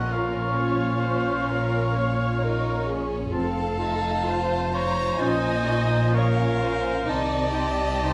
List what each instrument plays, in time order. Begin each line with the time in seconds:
Already playing: double bass section A#1, timpani A#2, cello section A#2, french horn section F3 C#4, violin section C#4 D#5, clarinet F4, viola section A#4, cor anglais F#5, flute section C#6
0.12 violin section C#5, cor anglais F5
0.57 viola section C#5
1.03 viola section C5
1.49 viola section A#4
1.96 viola section C#5
2.42 violin section D#4, viola section A#4
2.87 violin section C#4, viola section G#4
3.31 double bass section F1, cello section F2, french horn section F3 C4, violin section C4 F5, clarinet F4, viola section A4, cor anglais A5, flute section C6
3.78 violin section D#4, clarinet F4, flute section C6
4.24 clarinet F4, violin section F4, flute section C6
4.29 viola section C5
4.70 clarinet F4, violin section F4 A#5, flute section C6
4.74 cor anglais C#5
5.18 double bass section A#1, cello section A#2, french horn section F3 C#4, violin section D#4 G#5, clarinet F4, cor anglais C5, flute section C#6
5.22 viola section D#5
5.64 clarinet F4, flute section C#6
6.10 violin section C#4, clarinet F4, flute section C#6
6.14 cor anglais A#4, viola section C#5, violin section F5
6.56 clarinet F4
6.60 violin section C#4, viola section C5, flute section C#6
7.06 double bass section C2, cello section C3, french horn section C4, clarinet D#4, violin section D#4 D#5, viola section D5, cor anglais A5, flute section C6
7.11 french horn section D#3
7.53 clarinet D#4, violin section G4, flute section C6
8.03 clarinet D#4, viola section C5, flute section C6